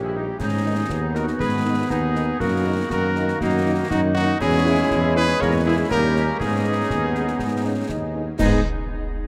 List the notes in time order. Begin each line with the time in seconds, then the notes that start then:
Already playing: A#1 G3 A#3 G4
0.03 E4 G#4
0.13 G3 A#3 D#4 G4
0.38 G#2 D#3 B3 C#4 D#4 G#4, concert bass drum, snare, crash
0.65 D#3 B3 D#4
0.89 D#2 B3, concert bass drum, snare
1.14 D#3 B3 D#4 F#4 A#4, snare
1.27 snare
1.39 G#2 G#4 B4, concert bass drum, snare
1.65 D#3 B3 D#4
1.89 D#2 B3 D#4 G#4, concert bass drum, snare
2.14 D#3 B3 D#4, snare
2.39 F#2 D#3 A#3 F#4 A#4, concert bass drum, snare
2.65 D#3 A#3 D#4
2.90 F#2 F#4 A#4, concert bass drum, snare
3.15 D#3 A#3 D#4, snare
3.28 snare
3.41 F#2 A#3 D#4 F#4, concert bass drum, snare
3.65 D#3 A#3 D#4
3.90 F#2 D#4 F#4, concert bass drum, snare
4.14 D#3 A#3 D#4 F#4, snare
4.39 E2 G#3 C#4 E4 G#4, concert bass drum, snare, crash
4.65 G#3 C#4 E4
4.91 E2, concert bass drum, snare
5.15 G#3 C#4 E4 G#4 B4, snare
5.29 snare
5.40 E2 G#3 A#3 A#4 C#5, concert bass drum, snare
5.65 G#3 A#3 E4 G#4
5.90 D#2 G3 A#3 C#4 G4 A#4, concert bass drum, snare
6.15 G3 A#3 C#4, snare
6.39 G#2 G#3 B3 D#4 G#4, concert bass drum, snare
6.65 G#3 B3 D#4
6.90 D#2 B3, concert bass drum, snare
7.15 G#3 B3 D#4, snare
7.27 snare
7.39 G#2 B3, concert bass drum, snare
7.65 G#3 B3 C#4 D#4
7.89 D#2 D#4, concert bass drum, snare
8.15 G#3 B3 D#4
8.39 G#2 G#3 B3 D#4 G#4, concert bass drum, snare, crash